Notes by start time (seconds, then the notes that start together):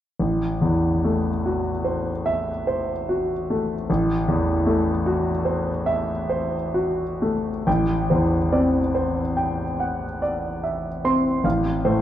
0.20 A1
0.61 E2
1.04 A3
1.46 F#4
1.84 C5
2.26 E5
2.67 C5
3.09 F#4
3.50 A3
3.90 A1
4.28 E2
4.66 A3
5.06 F#4
5.45 C5
5.86 E5
6.29 C5
6.74 F#4
7.22 A3
7.67 A1 G5
8.10 E2 C5
8.52 C4 D5
8.95 C5
9.37 G5
9.80 F#5
10.22 D5
10.64 E5
11.04 C4 C6
11.44 A1 F5
11.85 A2 C5